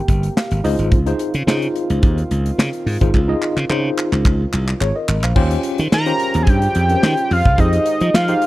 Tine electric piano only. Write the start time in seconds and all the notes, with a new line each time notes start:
Already playing: G5
0.37 F5
0.64 D#4 F4 G#4 C5 D#5
1.06 D#4 F4 G#4 C5
1.47 D#4 F4 G#4 C5
3.01 D#4 F4 G#4 C5
3.28 D#4 F4 G#4 D#5
3.69 D#4 F4 G#4 C5
4.81 G#4 C#5
4.96 A#4 D#5
5.23 C5 F5
5.36 C#4 F4 G4 C5
6.06 C#4 F4 G4 C5
6.90 C#4 F4 G4 A#4
6.97 C5
7.58 D#4 G4 G#4 C5
8.28 D#4 G4 G#4 C5